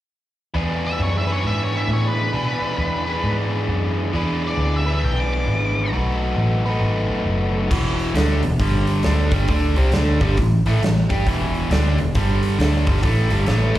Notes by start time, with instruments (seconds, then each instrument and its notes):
0.54 picked electric bass E2, overdriven electric guitar E3 B3 D4 G#4 B4
0.87 lead electric guitar E5
1.00 picked electric bass F#2, lead electric guitar C#5
1.18 lead electric guitar E5
1.27 overdriven electric guitar E3 B3 D4 G#4 B4
1.32 lead electric guitar C#5
1.44 picked electric bass G#2, lead electric guitar E5
1.63 lead electric guitar C#5
1.77 lead electric guitar E5
1.88 picked electric bass A2
1.93 lead electric guitar C#5
2.08 lead electric guitar B4
2.33 picked electric bass B2, overdriven electric guitar E3 B3 D4 G#4 B4
2.62 muted picked electric bass stroke
2.78 picked electric bass E2
3.06 overdriven electric guitar E3 B3 D4 G#4 B4
3.24 picked electric bass G#2
3.68 picked electric bass F#2
4.13 picked electric bass E2, overdriven electric guitar E3 B3 D4 G#4 B4
4.47 lead electric guitar D5
4.58 picked electric bass D2
4.76 lead electric guitar E5
4.86 overdriven electric guitar E3 B3 D4 G#4 B4
5.04 picked electric bass B1, lead electric guitar G5
5.20 lead electric guitar D6
5.33 lead electric guitar D6
5.48 picked electric bass G#1
5.92 picked electric bass B1, overdriven electric guitar B2 F#3 A3 D#4 F#4 B4
6.37 picked electric bass A1
6.66 overdriven electric guitar B2 F#3 A3 D#4 F#4 B4
6.81 picked electric bass G#1
7.10 muted picked electric bass stroke
7.25 picked electric bass F#1
7.71 picked electric bass E1, overdriven electric guitar E2 B2 E3, kick, crash
7.99 open hi-hat
8.14 picked electric bass D2, overdriven electric guitar D3 A3 D4, snare, open hi-hat
8.43 picked electric bass E1, overdriven electric guitar E2 B2, open hi-hat
8.59 picked electric bass G1, overdriven electric guitar G2 D3 G3, kick, open hi-hat
8.87 open hi-hat
9.03 picked electric bass D2, overdriven electric guitar D3 A3 D4, snare, open hi-hat
9.31 picked electric bass G1, overdriven electric guitar G2 D3 G3, kick, open hi-hat
9.48 picked electric bass D2, overdriven electric guitar D3 A3 D4, kick, open hi-hat
9.76 picked electric bass C2, overdriven electric guitar C3 G3 C4, open hi-hat
9.92 picked electric bass D2, overdriven electric guitar D3 A3 D4, snare, open hi-hat
10.20 picked electric bass G1, overdriven electric guitar G2 D3 G3, kick, open hi-hat
10.37 picked electric bass A1, overdriven electric guitar A2 E3, kick, open hi-hat
10.66 picked electric bass A1, overdriven electric guitar A2 E3 A3, open hi-hat
10.82 picked electric bass A1, overdriven electric guitar A2 E3, snare, open hi-hat
11.09 picked electric bass G2, overdriven electric guitar G3 D4 G4, kick, open hi-hat
11.27 picked electric bass E1, overdriven electric guitar E2 B2 E3, kick, open hi-hat
11.54 open hi-hat
11.71 picked electric bass D2, overdriven electric guitar D3 A3 D4, snare, open hi-hat
11.98 picked electric bass E1, overdriven electric guitar E2 B2, open hi-hat
12.15 picked electric bass G1, overdriven electric guitar G2 D3 G3, kick, open hi-hat
12.43 open hi-hat
12.59 picked electric bass D2, overdriven electric guitar D3 A3 D4, snare, open hi-hat
12.86 picked electric bass G1, overdriven electric guitar G2 D3 G3, kick, open hi-hat
12.97 snare
13.03 picked electric bass A1, overdriven electric guitar A2 E3 A3, kick, open hi-hat
13.30 picked electric bass G1, overdriven electric guitar G2 D3 G3, open hi-hat
13.46 picked electric bass A1, overdriven electric guitar A2 E3 A3, snare, open hi-hat
13.75 picked electric bass D2, overdriven electric guitar D3 A3, kick, open hi-hat